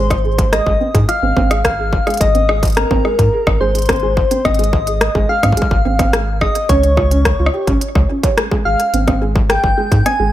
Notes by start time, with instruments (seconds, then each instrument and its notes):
Already playing: sub bass G#1, soft synth lead C5
0.10 kick, cross-stick, closed hi-hat
0.24 felt piano G#4
0.39 kick, closed hi-hat
0.52 felt piano G#3, soft synth lead D#5, cross-stick, closed hi-hat
0.66 sub bass G#1, felt piano G#3, kick
0.81 felt piano C4
0.94 sub bass G#2, felt piano G#3, kick, closed hi-hat
1.09 soft synth lead F5, cross-stick, closed hi-hat
1.22 sub bass G#1, felt piano C4
1.37 sub bass G#1, felt piano C4, kick
1.51 felt piano G#3, cross-stick, closed hi-hat
1.65 soft synth lead F5, kick, cross-stick, closed hi-hat
1.79 felt piano G#4
1.93 kick
2.07 felt piano G#3, cross-stick, closed hi-hat
2.10 closed hi-hat
2.14 closed hi-hat
2.17 sub bass G#1, felt piano G#3, soft synth lead D#5, kick, closed hi-hat
2.21 closed hi-hat
2.35 felt piano C4, closed hi-hat
2.49 felt piano G#3, cross-stick
2.63 kick, closed hi-hat
2.65 closed hi-hat
2.67 closed hi-hat
2.70 closed hi-hat
2.72 closed hi-hat
2.75 felt piano C4, soft synth lead A#4, cross-stick, closed hi-hat
2.77 closed hi-hat
2.91 sub bass G#1, felt piano C4, kick
3.05 felt piano G#3, cross-stick
3.19 sub bass G#2, kick, closed hi-hat
3.33 felt piano G#4
3.47 sub bass G#1, kick, cross-stick
3.61 sub bass G#1, felt piano G#3, soft synth lead C5
3.75 felt piano G#3, closed hi-hat
3.79 closed hi-hat
3.82 closed hi-hat
3.86 felt piano C4, kick, cross-stick, closed hi-hat
3.89 closed hi-hat
3.96 closed hi-hat
4.00 felt piano G#3, closed hi-hat
4.17 kick
4.31 felt piano C4, closed hi-hat
4.45 sub bass G#1, felt piano C4, soft synth lead D#5, kick, cross-stick, closed hi-hat
4.54 closed hi-hat
4.59 felt piano G#3, closed hi-hat
4.64 closed hi-hat
4.73 kick
4.87 felt piano G#4, closed hi-hat
5.01 cross-stick, closed hi-hat
5.15 sub bass G#1, felt piano G#3, kick
5.29 felt piano G#3, soft synth lead F5
5.43 sub bass G#2, felt piano C4, kick, cross-stick, closed hi-hat
5.52 kick
5.57 felt piano G#3, closed hi-hat
5.62 kick
5.71 sub bass G#1, kick
5.85 sub bass G#1, felt piano C4
5.99 felt piano C4, kick, cross-stick, closed hi-hat
6.13 felt piano G#3, cross-stick, closed hi-hat
6.41 felt piano G#4, soft synth lead D#5, kick, cross-stick
6.55 closed hi-hat
6.69 sub bass C#2, felt piano C#4, soft synth lead C#5, kick, closed hi-hat
6.83 felt piano C#4, closed hi-hat
6.97 felt piano F4, kick, cross-stick
7.11 felt piano C#4, closed hi-hat
7.25 kick, cross-stick, closed hi-hat
7.39 sub bass C#2, felt piano F4
7.46 cross-stick
7.53 felt piano G4
7.67 sub bass G#1, felt piano C#4, kick, closed hi-hat
7.81 closed hi-hat
7.95 sub bass C#2, felt piano C#5, kick, cross-stick
8.10 felt piano C#4
8.23 felt piano C#5, kick, closed hi-hat
8.38 felt piano G#3, cross-stick, closed hi-hat
8.52 felt piano G#3, kick
8.65 sub bass G#1, felt piano G#3, soft synth lead F5
8.80 closed hi-hat
8.94 sub bass G#1, felt piano C4, closed hi-hat
9.08 felt piano C4, kick, cross-stick, closed hi-hat
9.22 felt piano G#3
9.36 kick
9.50 felt piano G#4, soft synth lead G5, cross-stick, closed hi-hat
9.64 sub bass G#1, kick
9.78 felt piano G#3
9.92 sub bass G#2, felt piano G#3, kick, closed hi-hat
10.06 felt piano C4, soft synth lead G#5, cross-stick, closed hi-hat
10.20 sub bass G#1, felt piano G#3